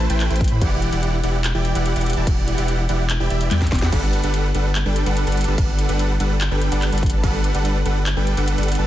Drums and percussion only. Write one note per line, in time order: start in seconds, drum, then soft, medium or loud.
0.10 closed hi-hat medium
0.20 clap medium
0.20 closed hi-hat medium
0.31 closed hi-hat soft
0.36 closed hi-hat medium
0.41 kick loud
0.41 closed hi-hat soft
0.44 closed hi-hat medium
0.48 closed hi-hat medium
0.61 kick loud
0.61 closed hi-hat medium
0.61 crash soft
0.82 closed hi-hat medium
0.93 closed hi-hat medium
1.03 closed hi-hat medium
1.24 closed hi-hat medium
1.44 clap loud
1.44 closed hi-hat medium
1.65 closed hi-hat medium
1.75 closed hi-hat medium
1.86 closed hi-hat medium
1.96 closed hi-hat soft
2.01 closed hi-hat medium
2.06 closed hi-hat soft
2.10 closed hi-hat medium
2.13 closed hi-hat medium
2.27 kick loud
2.27 closed hi-hat medium
2.27 crash soft
2.48 closed hi-hat medium
2.58 closed hi-hat medium
2.68 closed hi-hat medium
2.89 closed hi-hat medium
3.10 clap loud
3.10 closed hi-hat medium
3.30 closed hi-hat medium
3.41 closed hi-hat medium
3.51 clap medium
3.51 closed hi-hat medium
3.51 high tom medium
3.62 kick medium
3.62 snare medium
3.62 closed hi-hat soft
3.67 closed hi-hat medium
3.72 kick loud
3.72 snare medium
3.72 closed hi-hat soft
3.75 closed hi-hat medium
3.79 snare medium
3.79 closed hi-hat medium
3.92 kick loud
3.92 closed hi-hat medium
3.92 crash medium
3.92 crash soft
4.13 closed hi-hat medium
4.24 closed hi-hat medium
4.34 closed hi-hat medium
4.55 closed hi-hat medium
4.75 clap loud
4.75 closed hi-hat medium
4.96 closed hi-hat medium
5.06 closed hi-hat medium
5.17 closed hi-hat medium
5.27 closed hi-hat medium
5.32 closed hi-hat medium
5.37 closed hi-hat medium
5.41 closed hi-hat medium
5.44 closed hi-hat medium
5.58 kick loud
5.58 closed hi-hat medium
5.58 crash soft
5.79 closed hi-hat medium
5.89 closed hi-hat medium
5.99 closed hi-hat medium
6.20 closed hi-hat medium
6.41 clap loud
6.41 closed hi-hat medium
6.62 closed hi-hat medium
6.72 closed hi-hat medium
6.82 clap medium
6.82 closed hi-hat medium
6.93 closed hi-hat medium
6.98 closed hi-hat medium
7.03 kick loud
7.03 closed hi-hat medium
7.06 closed hi-hat medium
7.10 closed hi-hat medium
7.24 kick loud
7.24 closed hi-hat medium
7.24 crash soft
7.44 closed hi-hat medium
7.55 closed hi-hat medium
7.65 closed hi-hat medium
7.86 closed hi-hat medium
8.06 clap loud
8.06 closed hi-hat medium
8.27 closed hi-hat medium
8.37 closed hi-hat medium
8.48 closed hi-hat medium
8.58 closed hi-hat soft
8.63 closed hi-hat medium
8.68 closed hi-hat medium
8.72 closed hi-hat medium
8.75 closed hi-hat medium